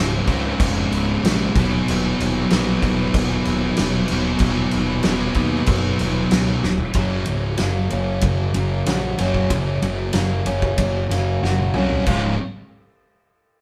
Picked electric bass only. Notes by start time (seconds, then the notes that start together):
Already playing: C#1
0.28 C#2
0.60 F1
0.91 C#1
1.24 A#1
1.56 D#1
1.89 D#1
2.20 D#1
2.52 A#1
2.83 D#1
3.15 D#1
3.47 D#1
3.80 D#1
4.11 D#1
4.41 D#1
4.75 D#1
5.05 D#1
5.36 D#2
5.68 F#1
6.00 D#1
6.32 C#2
6.63 D#1
6.95 F#1
7.27 C#1
7.60 F#1
7.92 F#1
8.23 F#1
8.55 F#1
8.87 A#1
9.19 F#1
9.50 F#1
9.83 F#1
10.14 F#1
10.46 F#1
10.79 F#1
11.10 F#1
11.43 F#1
11.75 C2
12.07 C#1